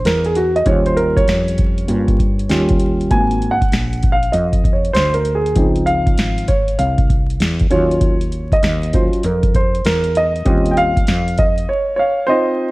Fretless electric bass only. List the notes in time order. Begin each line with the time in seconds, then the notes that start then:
0.05 E2
0.66 D#2
1.28 F2
1.89 G2
2.50 D#2
3.11 G#1
3.72 A#1
4.34 F2
4.95 D2
5.56 C#2
6.18 G#1
6.79 C2
7.40 E2
7.71 D#2
8.63 D#2
9.14 muted fretless electric bass stroke
9.24 F2
9.85 E2
10.46 D#2
11.08 F2